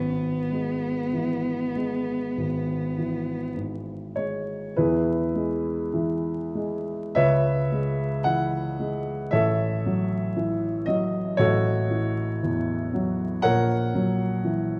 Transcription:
Already playing: grand piano G#1, cello B3
0.52 grand piano G#3
1.13 grand piano E3
1.75 grand piano G#3
2.37 grand piano G#1
2.98 grand piano E3
3.56 grand piano G#2
4.16 grand piano G#3 C#5
4.76 grand piano E2 E4 G#4 B4
5.34 grand piano G#3
5.94 grand piano E3
6.55 grand piano G#3
7.15 grand piano C#2 B4 C#5 E5
7.72 grand piano G#3
8.24 grand piano E3 F#5
8.80 grand piano G#3
9.31 grand piano A1 A4 C#5 E5
9.86 grand piano F#3
10.36 grand piano E3
10.86 grand piano F#3 D#5
11.37 grand piano A1 F#4 A4 C#5
11.90 grand piano E3
12.43 grand piano E2
12.94 grand piano F#3
13.42 grand piano A#1 A#4 C#5 F#5
13.95 grand piano F#3
14.44 grand piano E3

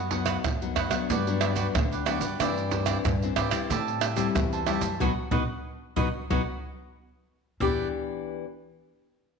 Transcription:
Already playing: upright bass F#2, nylon-string guitar F#2, cavaquinho D#5 F#5
0.11 nylon-string guitar F#3 B3 D#4, cavaquinho F#4 B4 D#5 F#5, pandeiro, surdo
0.25 cavaquinho F#4 B4 D#5 F#5, pandeiro, tamborim, shaker, surdo
0.44 nylon-string guitar F#2, upright bass F#2, pandeiro, tamborim, shaker, surdo
0.62 nylon-string guitar F#3 B3 D#4, pandeiro, shaker
0.75 upright bass F#2, cavaquinho F#4 B4 D#5 F#5, pandeiro, tamborim, surdo
0.90 nylon-string guitar F#3 B3 D4, cavaquinho B4 D#5 F#5, pandeiro, tamborim, shaker, surdo
1.10 upright bass G2, nylon-string guitar G2, cavaquinho F#4 G4 B4 D5, pandeiro, shaker, surdo
1.27 nylon-string guitar F#3 B3 D4, pandeiro, shaker
1.41 cavaquinho F#4 G4 B4 D5, pandeiro, tamborim, shaker
1.55 nylon-string guitar F#3 B3 D4, cavaquinho F#4 G4 B4 D5, pandeiro, shaker, surdo
1.75 upright bass D2, nylon-string guitar D3, pandeiro, tamborim, shaker, surdo
1.92 cavaquinho G4 B4 D5, pandeiro, shaker
2.06 nylon-string guitar F#3 B3 D4, cavaquinho F#4 G4 B4 D5, pandeiro, tamborim, shaker
2.21 upright bass G2, cavaquinho G4 B4 D5, pandeiro, shaker
2.40 upright bass G2, nylon-string guitar G2 E3 C4 D4, cavaquinho E4 G4 C5 D5, pandeiro, tamborim, shaker, surdo
2.58 pandeiro, shaker
2.71 cavaquinho E4 G4 C5 D5, pandeiro, surdo
2.86 nylon-string guitar E3 C4 D4, cavaquinho E4 G4 C5 D5, pandeiro, tamborim, shaker, surdo
3.05 upright bass G2, nylon-string guitar G2, pandeiro, tamborim, shaker, surdo
3.22 nylon-string guitar E3 C4 D4, pandeiro, shaker
3.36 upright bass G#2, cavaquinho E4 G4 C5 D5, pandeiro, tamborim, surdo
3.51 nylon-string guitar G3 C4 E4, cavaquinho G4 C5 D5, pandeiro, tamborim, shaker, surdo
3.70 upright bass A2, nylon-string guitar A2, cavaquinho G4 C5 E5 A5, pandeiro, shaker, surdo
3.88 pandeiro, shaker
4.01 cavaquinho G4 C5 E5 A5, pandeiro, tamborim, shaker
4.16 nylon-string guitar G3 C4 E4, cavaquinho G4 C5 E5 A5, pandeiro, shaker, surdo
4.35 upright bass E2, nylon-string guitar E3, pandeiro, tamborim, shaker, surdo
4.53 cavaquinho C5 E5 A5, pandeiro, shaker
4.66 nylon-string guitar G3 C4 E4, cavaquinho G4 C5 E5 A5, pandeiro, tamborim
4.81 upright bass F#2, cavaquinho C5 E5 A5, pandeiro, shaker
5.00 upright bass B1, nylon-string guitar F#3 B3 D#4, cavaquinho F#4 B4 D#5, surdo
5.31 upright bass B1, nylon-string guitar F#3 B3 D#4, cavaquinho F#4 B4 D#5, surdo
5.96 upright bass B1, nylon-string guitar F#3 B3 D#4, cavaquinho F#4 B4 D#5, surdo
6.30 upright bass B1, nylon-string guitar F#3 B3 D#4, cavaquinho F#4 B4 D#5, surdo
7.60 upright bass E2, nylon-string guitar E3 B3 D4 G4, cavaquinho E4 G4 B4 D5, surdo

